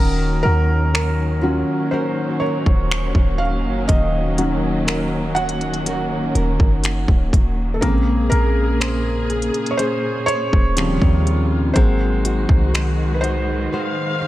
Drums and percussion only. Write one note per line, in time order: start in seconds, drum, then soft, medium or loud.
0.95 finger snap loud
2.66 kick medium
2.91 finger snap loud
3.15 kick medium
3.89 kick loud
3.89 closed hi-hat medium
4.38 closed hi-hat medium
4.88 finger snap loud
4.88 closed hi-hat medium
5.36 closed hi-hat soft
5.49 closed hi-hat soft
5.61 closed hi-hat soft
5.74 closed hi-hat soft
5.86 closed hi-hat medium
6.35 closed hi-hat medium
6.60 kick medium
6.84 finger snap loud
6.84 closed hi-hat medium
7.08 kick medium
7.33 kick medium
7.33 closed hi-hat medium
7.82 kick loud
7.82 closed hi-hat medium
8.32 closed hi-hat medium
8.81 finger snap loud
8.81 closed hi-hat medium
9.30 closed hi-hat soft
9.42 closed hi-hat soft
9.54 closed hi-hat soft
9.66 closed hi-hat soft
9.79 closed hi-hat medium
10.28 closed hi-hat medium
10.53 kick medium
10.77 finger snap loud
10.77 closed hi-hat medium
11.02 kick medium
11.27 closed hi-hat medium
11.76 kick loud
11.76 closed hi-hat medium
12.25 closed hi-hat medium
12.49 kick loud
12.75 finger snap loud
12.75 closed hi-hat medium
13.24 closed hi-hat medium